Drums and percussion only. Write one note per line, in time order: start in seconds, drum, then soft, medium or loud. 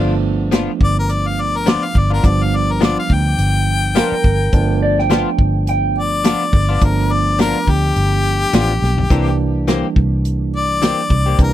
0.52 snare medium
0.52 closed hi-hat medium
0.81 kick medium
1.09 closed hi-hat medium
1.67 snare loud
1.67 closed hi-hat medium
1.95 kick medium
2.24 kick medium
2.24 closed hi-hat medium
2.81 snare loud
2.81 closed hi-hat medium
3.10 kick medium
3.38 closed hi-hat medium
3.95 snare loud
3.95 closed hi-hat medium
4.24 kick medium
4.53 kick medium
4.53 closed hi-hat medium
4.99 snare soft
5.10 snare medium
5.10 closed hi-hat medium
5.39 kick medium
5.67 closed hi-hat medium
6.24 snare loud
6.24 closed hi-hat medium
6.53 kick medium
6.81 kick medium
6.81 closed hi-hat medium
6.99 snare soft
7.39 snare medium
7.39 closed hi-hat medium
7.67 kick medium
7.96 closed hi-hat medium
8.53 snare loud
8.53 closed hi-hat medium
8.84 snare soft
8.98 floor tom medium
9.10 kick medium
9.10 closed hi-hat soft
9.68 snare medium
9.68 closed hi-hat medium
9.96 kick medium
10.25 closed hi-hat medium
10.82 snare loud
10.82 closed hi-hat medium
11.10 kick medium
11.39 kick loud
11.39 closed hi-hat medium